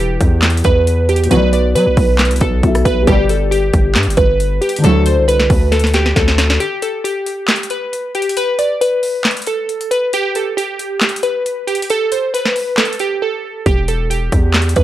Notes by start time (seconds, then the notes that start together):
Already playing: E1 E3 E4 G4 B4
0.00 G4
0.21 E2, kick, closed hi-hat
0.42 snare, clap, closed hi-hat
0.50 closed hi-hat
0.57 closed hi-hat
0.64 E2 B4, kick, closed hi-hat
0.87 closed hi-hat
1.09 G4, closed hi-hat
1.16 closed hi-hat
1.24 B2, closed hi-hat
1.29 B1 D2 B2 F#3 B3 F#4 B4, closed hi-hat
1.37 D5
1.53 D5, closed hi-hat
1.75 F#3 B4, closed hi-hat
1.87 B1
1.97 B1, kick, open hi-hat
2.19 snare, clap, closed hi-hat
2.25 closed hi-hat
2.31 C2, closed hi-hat
2.36 closed hi-hat
2.41 B1 A4, kick, closed hi-hat
2.61 B1 B2 B3 F#4, kick, closed hi-hat
2.67 E5
2.75 cross-stick, closed hi-hat
2.85 B1 B4, kick, closed hi-hat
3.01 G3 G4
3.07 G1 D2 B2 G3 G4 B4, kick, closed hi-hat
3.13 D5
3.29 A4, closed hi-hat
3.51 G4, closed hi-hat
3.74 G1, kick, closed hi-hat
3.95 G2, snare, clap, closed hi-hat
4.03 closed hi-hat
4.07 G1, closed hi-hat
4.17 G1 B4, kick, closed hi-hat
4.40 closed hi-hat
4.61 G4, closed hi-hat
4.69 closed hi-hat
4.76 D3, closed hi-hat
4.82 D2 A2 F#3 D4 F#4 A4, closed hi-hat
4.89 A4
5.06 C5, closed hi-hat
5.18 C2
5.28 B4, closed hi-hat
5.40 snare
5.50 D2, kick, open hi-hat
5.72 A4, snare, closed hi-hat
5.79 closed hi-hat
5.84 snare, closed hi-hat
5.94 G4, snare, closed hi-hat
6.06 snare
6.16 D2 A4, kick, snare, closed hi-hat
6.28 snare
6.38 snare, closed hi-hat
6.50 snare
6.60 G4, closed hi-hat
6.82 A4, closed hi-hat
7.04 G4, closed hi-hat
7.26 closed hi-hat
7.48 snare, clap, closed hi-hat
7.56 closed hi-hat
7.63 closed hi-hat
7.70 B4, closed hi-hat
7.93 closed hi-hat
8.15 G4, closed hi-hat
8.22 closed hi-hat
8.29 closed hi-hat
8.37 B4, closed hi-hat
8.59 D5, closed hi-hat
8.81 B4, closed hi-hat
9.03 open hi-hat
9.25 snare, clap, closed hi-hat
9.31 closed hi-hat
9.37 closed hi-hat
9.42 closed hi-hat
9.46 A4, closed hi-hat
9.69 closed hi-hat
9.81 closed hi-hat
9.91 B4, closed hi-hat
10.13 G4, closed hi-hat
10.35 A4, closed hi-hat
10.57 G4, closed hi-hat
10.79 closed hi-hat
11.01 snare, clap, closed hi-hat
11.09 closed hi-hat
11.16 closed hi-hat
11.23 B4, closed hi-hat
11.46 closed hi-hat
11.67 G4, closed hi-hat
11.75 closed hi-hat
11.82 closed hi-hat
11.90 A4, closed hi-hat
12.12 C5, closed hi-hat
12.34 B4, closed hi-hat
12.46 snare
12.56 open hi-hat
12.78 A4, snare, clap, closed hi-hat
12.85 closed hi-hat
12.93 closed hi-hat
12.99 G4, closed hi-hat
13.22 A4
13.66 E1 G4, kick, closed hi-hat
13.88 A4, closed hi-hat
14.10 G4, closed hi-hat
14.32 E2, kick, closed hi-hat
14.54 snare, clap, closed hi-hat
14.62 closed hi-hat
14.69 closed hi-hat
14.76 E2 B4, kick, closed hi-hat